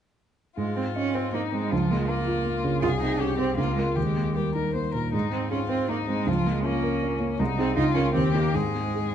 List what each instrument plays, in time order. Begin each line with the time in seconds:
0.57 grand piano G#2, cello G#3, violin F4
0.77 cello C4, grand piano C4
0.96 cello C#4, grand piano D#5
1.15 cello C4, grand piano C5
1.34 cello A#3, grand piano D#4, violin D#4
1.52 cello G#3, grand piano C4
1.71 grand piano C#2, cello F3, violin F4
1.91 cello G#3, grand piano A#3
2.08 cello A#3, violin F4, grand piano A#4
2.27 grand piano F4
2.45 grand piano A#3
2.64 grand piano C#3
2.82 grand piano C2, cello F4, violin G#4
3.01 grand piano C4, cello D#4
3.19 cello C#4, violin G4, grand piano G#4
3.38 cello C4, grand piano C5
3.57 grand piano C#2, cello A#3, violin F4
3.77 cello G#3, grand piano F4 A#4
3.96 grand piano D#2, cello G#3, violin G4
4.17 grand piano A#3
4.35 cello G3, violin G4, grand piano A#4
4.55 grand piano D#4, violin A#4
4.74 grand piano A#3, violin C5
4.94 grand piano A#2, violin A#4
5.13 grand piano G#2, cello G#3, violin D#4
5.32 grand piano C4, cello C4
5.51 cello C#4, violin F4, grand piano G#4
5.69 cello C4, grand piano C5
5.88 cello A#3, grand piano D#4, violin D#4
6.08 cello G#3, grand piano C4
6.26 grand piano C#2, cello F3, violin F4
6.46 cello G#3, grand piano A#3
6.64 cello A#3, violin C#4, grand piano F4
6.83 grand piano A#4
7.03 grand piano C#4
7.20 grand piano A#3
7.39 grand piano C2, cello G#3, violin D#4
7.58 cello C4, grand piano D#4 G#4
7.76 grand piano C#2, cello D#4, violin F4
7.95 cello C#4, grand piano F4 A#4
8.14 grand piano D#2, cello C4, violin G4
8.34 cello A#3, grand piano D#4 G4
8.54 grand piano G#2, cello G#3, violin G#4
8.74 grand piano C4
8.95 grand piano G#4